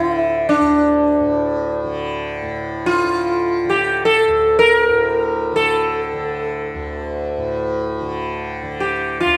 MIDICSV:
0, 0, Header, 1, 3, 480
1, 0, Start_track
1, 0, Tempo, 500000
1, 8995, End_track
2, 0, Start_track
2, 0, Title_t, "Sitar"
2, 0, Program_c, 0, 104
2, 0, Note_on_c, 0, 64, 82
2, 465, Note_off_c, 0, 64, 0
2, 469, Note_on_c, 0, 62, 69
2, 1717, Note_off_c, 0, 62, 0
2, 2748, Note_on_c, 0, 65, 65
2, 3548, Note_on_c, 0, 67, 67
2, 3561, Note_off_c, 0, 65, 0
2, 3866, Note_off_c, 0, 67, 0
2, 3889, Note_on_c, 0, 69, 74
2, 4400, Note_off_c, 0, 69, 0
2, 4404, Note_on_c, 0, 70, 82
2, 5332, Note_off_c, 0, 70, 0
2, 5336, Note_on_c, 0, 69, 74
2, 7245, Note_off_c, 0, 69, 0
2, 8451, Note_on_c, 0, 67, 58
2, 8832, Note_off_c, 0, 67, 0
2, 8836, Note_on_c, 0, 65, 66
2, 8995, Note_off_c, 0, 65, 0
2, 8995, End_track
3, 0, Start_track
3, 0, Title_t, "Tanpura"
3, 0, Program_c, 1, 104
3, 0, Note_on_c, 1, 38, 51
3, 0, Note_on_c, 1, 45, 53
3, 0, Note_on_c, 1, 50, 53
3, 575, Note_off_c, 1, 38, 0
3, 579, Note_on_c, 1, 38, 52
3, 1152, Note_off_c, 1, 45, 0
3, 1155, Note_on_c, 1, 45, 55
3, 1769, Note_off_c, 1, 50, 0
3, 1769, Note_on_c, 1, 50, 57
3, 2328, Note_off_c, 1, 45, 0
3, 2328, Note_on_c, 1, 45, 47
3, 2918, Note_off_c, 1, 50, 0
3, 2918, Note_on_c, 1, 50, 51
3, 3500, Note_off_c, 1, 50, 0
3, 3500, Note_on_c, 1, 50, 52
3, 4105, Note_off_c, 1, 38, 0
3, 4109, Note_on_c, 1, 38, 53
3, 4698, Note_off_c, 1, 45, 0
3, 4698, Note_on_c, 1, 45, 47
3, 5294, Note_off_c, 1, 50, 0
3, 5298, Note_on_c, 1, 50, 55
3, 5888, Note_off_c, 1, 50, 0
3, 5888, Note_on_c, 1, 50, 49
3, 6471, Note_off_c, 1, 38, 0
3, 6475, Note_on_c, 1, 38, 57
3, 7077, Note_off_c, 1, 45, 0
3, 7080, Note_on_c, 1, 45, 55
3, 7689, Note_off_c, 1, 50, 0
3, 7689, Note_on_c, 1, 50, 55
3, 8285, Note_off_c, 1, 50, 0
3, 8285, Note_on_c, 1, 50, 53
3, 8881, Note_off_c, 1, 38, 0
3, 8885, Note_on_c, 1, 38, 56
3, 8995, Note_off_c, 1, 38, 0
3, 8995, Note_off_c, 1, 45, 0
3, 8995, Note_off_c, 1, 50, 0
3, 8995, End_track
0, 0, End_of_file